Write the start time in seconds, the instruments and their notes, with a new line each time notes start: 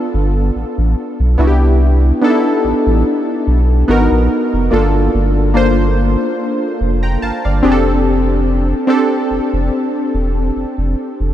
Already playing: synth keys B3 D4 F4 A4
0.14 sub bass G1
0.56 sub bass A1
0.78 sub bass A1
1.20 sub bass B1
1.38 sub bass C2, synth keys B3 D4 E4 F#4
1.47 synth keys G4
2.21 synth keys B3 D4 D#4 A4
2.30 synth keys E4
2.64 sub bass A1
2.87 sub bass A1
3.47 sub bass B1
3.88 sub bass G#1, synth keys B3 D#4 F#4 A#4
4.12 sub bass A#1
4.54 sub bass F1
4.71 sub bass G1, synth keys A#3 D4 F4 A4
5.15 sub bass G1
5.54 synth keys A#3 D4 F4 C5
6.81 sub bass F1
7.03 synth keys G5 A#5
7.22 sub bass G1, synth keys F5 A5
7.45 sub bass G1, synth keys D5 F5
7.62 sub bass F1, synth keys C4 D4 G4 G#4
7.72 synth keys A4
8.87 synth keys C4 D4 G4 A4
9.31 sub bass F1
9.53 sub bass F1
10.14 sub bass E1
10.56 sub bass F1
10.78 sub bass F1
11.20 sub bass F1